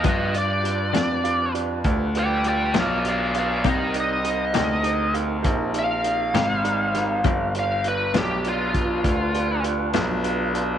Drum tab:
HH |xxxxxxxxxxxx|xxxxxxxxxxxx|xxxxxxxxxxxx|
SD |---o-----o--|---o-----o-o|---o-----o--|
BD |o-----o-----|o-----o-----|o----oo-----|